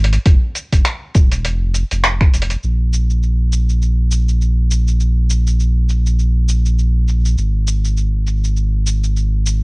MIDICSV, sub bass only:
0, 0, Header, 1, 2, 480
1, 0, Start_track
1, 0, Tempo, 594059
1, 202, Time_signature, 4, 2, 24, 8
1, 7783, End_track
2, 0, Start_track
2, 0, Title_t, "Sub bass"
2, 0, Program_c, 0, 38
2, 0, Note_on_c, 0, 32, 86
2, 142, Note_off_c, 0, 32, 0
2, 207, Note_on_c, 0, 29, 104
2, 301, Note_off_c, 0, 29, 0
2, 585, Note_on_c, 0, 29, 104
2, 654, Note_off_c, 0, 29, 0
2, 928, Note_on_c, 0, 27, 89
2, 1169, Note_on_c, 0, 29, 99
2, 1181, Note_off_c, 0, 27, 0
2, 1478, Note_off_c, 0, 29, 0
2, 1546, Note_on_c, 0, 29, 80
2, 1837, Note_off_c, 0, 29, 0
2, 1887, Note_on_c, 0, 29, 78
2, 2064, Note_off_c, 0, 29, 0
2, 2128, Note_on_c, 0, 34, 86
2, 5944, Note_off_c, 0, 34, 0
2, 5961, Note_on_c, 0, 32, 88
2, 7783, Note_off_c, 0, 32, 0
2, 7783, End_track
0, 0, End_of_file